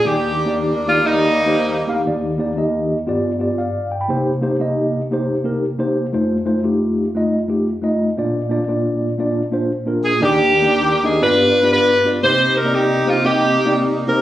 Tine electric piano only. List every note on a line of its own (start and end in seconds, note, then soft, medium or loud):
0.04 2.03 D#2 medium
0.04 2.03 D#3 medium
0.04 0.38 A#3 medium
0.04 0.38 D#4 medium
0.04 0.38 G4 medium
0.04 0.39 D5 medium
0.46 0.72 A#3 medium
0.46 0.72 D#4 medium
0.46 0.73 G4 medium
0.46 0.73 D5 medium
0.87 1.00 A#3 medium
0.87 1.00 D#4 medium
0.87 1.00 G4 medium
0.87 1.01 D5 medium
1.05 1.39 A#3 medium
1.05 1.39 D#4 medium
1.05 1.39 G4 medium
1.05 1.40 D5 medium
1.46 1.73 A#3 medium
1.46 1.73 D#4 medium
1.46 1.74 G4 medium
1.46 1.74 C5 medium
1.87 2.01 A#3 medium
1.87 2.01 D#4 medium
1.87 2.01 G4 medium
1.87 2.02 F5 loud
2.06 3.04 D#2 medium
2.06 3.04 D#3 medium
2.06 2.29 A#3 medium
2.06 2.29 D#4 medium
2.06 2.29 G4 medium
2.06 2.30 D5 medium
2.38 2.51 A#3 medium
2.38 2.52 D#4 medium
2.38 2.52 G4 medium
2.38 2.52 D5 medium
2.56 2.96 A#3 medium
2.56 2.97 D#4 medium
2.56 2.97 G4 medium
2.56 2.97 D#5 medium
3.07 4.06 G2 medium
3.07 3.30 B3 medium
3.07 3.30 F4 medium
3.07 3.31 G4 medium
3.07 3.31 D5 medium
3.39 3.59 B3 medium
3.39 3.59 F4 medium
3.39 3.60 G4 medium
3.39 3.58 D5 medium
3.58 3.91 D5 soft
3.58 3.90 F5 medium
3.92 4.00 G5 medium
4.01 4.26 G5 soft
4.01 4.25 B5 medium
4.08 6.09 C2 medium
4.08 6.09 C3 medium
4.08 4.32 A#3 medium
4.08 4.32 D#4 medium
4.08 4.32 G4 medium
4.08 4.33 C5 medium
4.41 4.55 A#3 medium
4.41 4.55 D#4 medium
4.41 4.55 G4 medium
4.41 4.56 C5 medium
4.59 5.00 A#3 medium
4.59 5.00 D#4 medium
4.59 5.00 G4 medium
4.59 5.01 D#5 medium
5.11 5.34 A#3 medium
5.11 5.34 D#4 medium
5.11 5.35 G4 medium
5.11 5.35 C5 medium
5.44 5.63 A#3 medium
5.44 5.64 D#4 medium
5.44 5.64 G4 medium
5.44 5.64 A#4 medium
5.78 6.05 A#3 medium
5.78 6.05 D#4 medium
5.78 6.05 G4 medium
5.78 6.06 C5 medium
6.13 8.13 F2 medium
6.13 6.36 A3 medium
6.13 6.36 D#4 medium
6.13 6.36 F4 medium
6.13 6.37 C5 medium
6.45 6.58 A3 medium
6.45 6.59 D#4 medium
6.45 6.59 F4 medium
6.45 6.59 C5 medium
6.63 7.04 A3 medium
6.63 7.04 D#4 medium
6.63 7.04 F4 medium
6.63 7.04 G4 medium
7.15 7.38 A3 medium
7.15 7.38 D#4 medium
7.15 7.38 F4 medium
7.15 7.39 D#5 medium
7.48 7.67 A3 medium
7.48 7.68 D#4 medium
7.48 7.68 F4 medium
7.48 7.68 G4 medium
7.82 8.08 A3 medium
7.82 8.09 D#4 medium
7.82 8.09 F4 medium
7.82 8.09 D#5 medium
8.17 10.17 A#1 medium
8.17 10.17 A#2 medium
8.17 8.40 A#3 medium
8.17 8.40 D4 medium
8.17 8.40 F4 medium
8.17 8.41 D5 medium
8.49 8.62 A#3 medium
8.49 8.63 D4 medium
8.49 8.63 F4 medium
8.49 8.63 D5 medium
8.67 9.07 A#3 medium
8.67 9.08 D4 medium
8.67 9.08 F4 medium
8.67 9.08 D5 medium
9.18 9.41 A#3 medium
9.18 9.41 D4 medium
9.18 9.42 F4 medium
9.18 9.42 D5 medium
9.51 9.71 A#3 medium
9.51 9.71 D4 medium
9.51 9.71 F4 medium
9.51 9.72 C5 medium
9.86 10.12 A#3 medium
9.86 10.12 D4 medium
9.86 10.13 F4 medium
9.86 10.13 A#4 medium
10.20 11.18 D#2 medium
10.20 11.18 D#3 medium
10.20 10.54 A#3 medium
10.20 10.54 D4 medium
10.20 10.54 D#4 medium
10.20 10.54 G4 medium
10.20 10.55 D5 medium
10.62 10.88 A#3 medium
10.62 10.89 D4 medium
10.62 10.89 D#4 medium
10.62 10.89 G4 medium
10.62 10.89 D5 medium
11.03 11.16 A#3 medium
11.03 11.16 D4 medium
11.03 11.16 D#4 medium
11.03 11.17 G4 medium
11.03 11.17 D#5 medium
11.21 12.19 G2 medium
11.21 11.55 B3 medium
11.21 11.55 D4 medium
11.21 11.55 F4 medium
11.21 11.55 G4 medium
11.21 11.56 D5 medium
11.63 11.90 B3 medium
11.63 11.90 D4 medium
11.63 11.90 F4 medium
11.63 11.90 G4 medium
11.63 11.90 D5 medium
12.05 12.17 B3 medium
12.05 12.18 D4 medium
12.05 12.18 F4 medium
12.05 12.18 G4 medium
12.05 12.18 D5 medium
12.22 14.22 C2 medium
12.22 14.22 C3 medium
12.22 12.56 A#3 medium
12.22 12.56 C4 medium
12.22 12.57 D#4 medium
12.22 12.57 G4 medium
12.22 12.57 C5 medium
12.64 12.91 A#3 medium
12.64 12.91 C4 medium
12.64 12.91 D#4 medium
12.64 12.91 G4 medium
12.64 12.92 D5 medium
13.05 13.18 A#3 medium
13.05 13.18 C4 medium
13.05 13.19 D#4 medium
13.05 13.19 G4 medium
13.05 13.19 C5 medium
13.24 13.57 A#3 medium
13.24 13.58 C4 medium
13.24 13.58 D#4 medium
13.24 13.58 G4 medium
13.24 13.58 D#5 medium
13.65 13.92 A#3 medium
13.65 13.92 C4 medium
13.65 13.92 D#4 medium
13.65 13.93 G4 medium
13.65 13.93 D5 medium
14.07 14.19 A#3 medium
14.07 14.20 C4 medium
14.07 14.20 D#4 medium
14.07 14.20 G4 medium
14.07 14.20 C5 medium